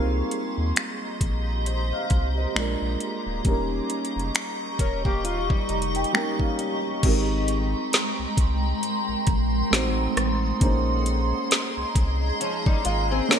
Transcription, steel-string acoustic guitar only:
0, 0, Header, 1, 2, 480
1, 0, Start_track
1, 0, Key_signature, -4, "major"
1, 0, Tempo, 895522
1, 1848, Time_signature, 4, 2, 24, 8
1, 7178, End_track
2, 0, Start_track
2, 0, Title_t, "Steel-string acoustic guitar"
2, 0, Program_c, 0, 25
2, 0, Note_on_c, 0, 56, 60
2, 0, Note_on_c, 0, 65, 77
2, 56, Note_off_c, 0, 65, 0
2, 57, Note_off_c, 0, 56, 0
2, 2569, Note_on_c, 0, 70, 74
2, 2572, Note_on_c, 0, 61, 66
2, 2701, Note_off_c, 0, 70, 0
2, 2703, Note_off_c, 0, 61, 0
2, 2708, Note_on_c, 0, 67, 85
2, 2712, Note_on_c, 0, 58, 72
2, 2804, Note_off_c, 0, 67, 0
2, 2805, Note_off_c, 0, 58, 0
2, 2809, Note_on_c, 0, 65, 80
2, 2941, Note_off_c, 0, 65, 0
2, 2948, Note_on_c, 0, 63, 68
2, 2952, Note_on_c, 0, 55, 59
2, 3646, Note_off_c, 0, 63, 0
2, 3648, Note_off_c, 0, 55, 0
2, 6647, Note_on_c, 0, 61, 80
2, 6651, Note_on_c, 0, 53, 61
2, 6780, Note_off_c, 0, 61, 0
2, 6782, Note_off_c, 0, 53, 0
2, 6787, Note_on_c, 0, 63, 85
2, 6790, Note_on_c, 0, 55, 71
2, 6883, Note_off_c, 0, 63, 0
2, 6885, Note_off_c, 0, 55, 0
2, 6887, Note_on_c, 0, 65, 86
2, 6891, Note_on_c, 0, 56, 76
2, 7020, Note_off_c, 0, 65, 0
2, 7022, Note_off_c, 0, 56, 0
2, 7028, Note_on_c, 0, 68, 87
2, 7031, Note_on_c, 0, 60, 75
2, 7123, Note_off_c, 0, 68, 0
2, 7125, Note_off_c, 0, 60, 0
2, 7129, Note_on_c, 0, 70, 82
2, 7132, Note_on_c, 0, 61, 69
2, 7178, Note_off_c, 0, 61, 0
2, 7178, Note_off_c, 0, 70, 0
2, 7178, End_track
0, 0, End_of_file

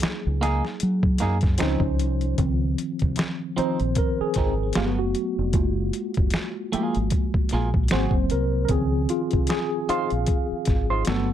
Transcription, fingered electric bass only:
0, 0, Header, 1, 3, 480
1, 0, Start_track
1, 0, Key_signature, -5, "major"
1, 0, Tempo, 789474
1, 1449, Time_signature, 4, 2, 24, 8
1, 6891, End_track
2, 0, Start_track
2, 0, Title_t, "Fingered electric bass"
2, 0, Program_c, 0, 33
2, 162, Note_on_c, 0, 37, 88
2, 372, Note_off_c, 0, 37, 0
2, 504, Note_on_c, 0, 54, 91
2, 714, Note_off_c, 0, 54, 0
2, 743, Note_on_c, 0, 42, 84
2, 953, Note_off_c, 0, 42, 0
2, 984, Note_on_c, 0, 37, 99
2, 1096, Note_off_c, 0, 37, 0
2, 1099, Note_on_c, 0, 37, 70
2, 1221, Note_off_c, 0, 37, 0
2, 1221, Note_on_c, 0, 36, 93
2, 1432, Note_off_c, 0, 36, 0
2, 1454, Note_on_c, 0, 37, 88
2, 1668, Note_off_c, 0, 37, 0
2, 1842, Note_on_c, 0, 36, 77
2, 1927, Note_off_c, 0, 36, 0
2, 2314, Note_on_c, 0, 34, 78
2, 2403, Note_off_c, 0, 34, 0
2, 2657, Note_on_c, 0, 32, 67
2, 2870, Note_off_c, 0, 32, 0
2, 2898, Note_on_c, 0, 31, 92
2, 3035, Note_off_c, 0, 31, 0
2, 3035, Note_on_c, 0, 30, 70
2, 3123, Note_off_c, 0, 30, 0
2, 3275, Note_on_c, 0, 29, 84
2, 3371, Note_off_c, 0, 29, 0
2, 3371, Note_on_c, 0, 30, 86
2, 3586, Note_off_c, 0, 30, 0
2, 3759, Note_on_c, 0, 29, 84
2, 3846, Note_off_c, 0, 29, 0
2, 4235, Note_on_c, 0, 32, 81
2, 4323, Note_off_c, 0, 32, 0
2, 4580, Note_on_c, 0, 34, 87
2, 4791, Note_off_c, 0, 34, 0
2, 4821, Note_on_c, 0, 32, 103
2, 4933, Note_off_c, 0, 32, 0
2, 4937, Note_on_c, 0, 30, 80
2, 5033, Note_off_c, 0, 30, 0
2, 5058, Note_on_c, 0, 36, 96
2, 5270, Note_off_c, 0, 36, 0
2, 5292, Note_on_c, 0, 37, 90
2, 5507, Note_off_c, 0, 37, 0
2, 5681, Note_on_c, 0, 36, 72
2, 5767, Note_off_c, 0, 36, 0
2, 6154, Note_on_c, 0, 34, 71
2, 6243, Note_off_c, 0, 34, 0
2, 6496, Note_on_c, 0, 32, 78
2, 6709, Note_off_c, 0, 32, 0
2, 6736, Note_on_c, 0, 31, 96
2, 6874, Note_off_c, 0, 31, 0
2, 6891, End_track
3, 0, Start_track
3, 0, Title_t, "Muted fingered electric bass strokes"
3, 24, Note_on_c, 9, 29, 46
3, 85, Note_off_c, 9, 29, 0
3, 2179, Note_on_c, 9, 29, 46
3, 2240, Note_off_c, 9, 29, 0
3, 2558, Note_on_c, 9, 29, 44
3, 2619, Note_off_c, 9, 29, 0
3, 4098, Note_on_c, 9, 29, 46
3, 4159, Note_off_c, 9, 29, 0
3, 4469, Note_on_c, 9, 29, 45
3, 4530, Note_off_c, 9, 29, 0
3, 6014, Note_on_c, 9, 29, 45
3, 6075, Note_off_c, 9, 29, 0
3, 6393, Note_on_c, 9, 29, 45
3, 6454, Note_off_c, 9, 29, 0
3, 6891, End_track
0, 0, End_of_file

